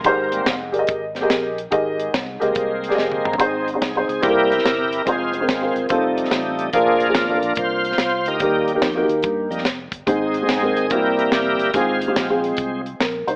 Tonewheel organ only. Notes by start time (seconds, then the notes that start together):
Already playing: A#4
0.31 G3 A#3 C4
1.16 G3 A#3 C4
2.41 G#3 A#3 C4
3.39 G#3 C4 D#4
3.81 G#4
4.09 G#4
4.22 G3 A#3 E4 G4 A#4
5.05 G#3 C4 F4 G#4
5.34 G#3 C4 F4
5.90 G3 A3 D#4
6.74 F3 A#3 D4 F4 G#4
7.42 A#4
7.58 F4 C5
8.28 D#4 G4 A#4
8.42 G3 A#3 D#4
9.51 G3 A#3 D#4
10.06 G#3 C4 D#4
10.49 G#4
10.77 G#4
10.91 G3 A#3 E4 G4 A#4
11.73 G#3 C4 F4 G#4
12.01 G#3 C4 F4